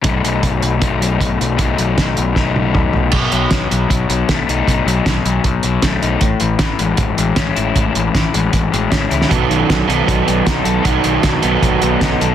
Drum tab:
CC |----------------|----------------|x---------------|----------------|
HH |x-x-x-x-x-x-x-x-|x-x-x-x---------|--x-x-x-x-x-x-x-|x-x-x-x-x-x-x-x-|
SD |----------------|----o---o-------|----o-------o---|----o-------o---|
T1 |----------------|----------o-----|----------------|----------------|
T2 |----------------|------------o---|----------------|----------------|
FT |----------------|--------------o-|----------------|----------------|
BD |o---o---o---o---|o---o---o---o---|o---o---o---o---|o---o---o---o---|

CC |----------------|----------------|----------------|----------------|
HH |x-x-x-x-x-x-x-x-|x-x-x-x-x-x-x-x-|x-x-x-x-x-x-x-x-|x-x-x-x-x-x-x-x-|
SD |----o-------o---|----o-------o--o|----o-------o---|----o-------o---|
T1 |----------------|----------------|----------------|----------------|
T2 |----------------|----------------|----------------|----------------|
FT |----------------|----------------|----------------|----------------|
BD |o---o---o---o---|o---o---o---o---|o---o---o---o---|o---o---o---o---|